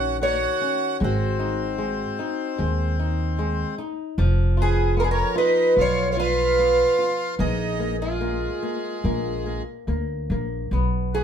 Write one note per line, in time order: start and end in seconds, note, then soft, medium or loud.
0.00 0.45 A#1 medium
0.00 0.97 D#3 medium
0.00 0.20 C#4 soft
0.00 0.17 F#4 medium
0.00 0.18 C#5 medium
0.22 0.60 A#3 medium
0.22 0.97 F#4 medium
0.22 1.04 C#5 medium
0.61 1.00 C#4 medium
1.00 2.04 G#1 medium
1.00 1.77 G#3 medium
1.00 3.75 C4 medium
1.04 3.76 F#4 medium
1.39 1.78 D#4 medium
1.78 2.17 G#3 medium
2.19 2.58 D#4 medium
2.58 3.62 D#2 medium
2.58 2.97 G#3 medium
2.99 3.38 D#4 soft
3.39 3.77 G#3 medium
3.78 4.17 D#4 medium
4.18 5.22 F1 medium
4.18 7.35 F3 medium
4.57 4.95 B3 medium
4.57 4.96 F4 medium
4.62 4.99 G#4 medium
4.97 5.36 B3 medium
4.97 5.04 F4 medium
4.97 5.04 A#4 medium
5.03 5.10 B3 medium
5.03 5.11 G#4 medium
5.11 5.36 C#4 medium
5.11 5.38 A#4 medium
5.35 5.75 D#4 medium
5.35 5.76 F4 medium
5.35 5.79 B4 medium
5.76 6.82 B1 medium
5.76 6.16 B3 medium
5.76 6.09 F4 medium
5.81 6.11 C#5 loud
6.10 6.17 F4 medium
6.10 6.19 C#5 medium
6.17 6.56 F4 medium
6.17 7.35 F4 medium
6.17 7.43 B4 loud
6.59 6.98 B3 medium
6.98 7.38 F4 medium
7.39 8.46 A#1 medium
7.39 7.78 A#3 medium
7.39 7.97 D#4 medium
7.39 8.02 G#4 medium
7.80 8.20 A#3 medium
7.99 9.63 G#3 medium
7.99 9.64 F4 medium
8.21 8.61 A#3 medium
8.63 9.03 A#3 medium
9.04 9.59 A#1 medium
9.04 9.45 A#3 medium
9.46 9.87 A#3 soft
9.87 10.26 D2 medium
9.87 10.29 A#3 medium
10.30 10.68 A#1 medium
10.30 10.72 A#3 soft
10.71 11.24 B1 medium
10.71 11.24 B3 medium
11.13 11.24 B3 medium
11.13 11.24 F#4 soft
11.13 11.24 G#4 medium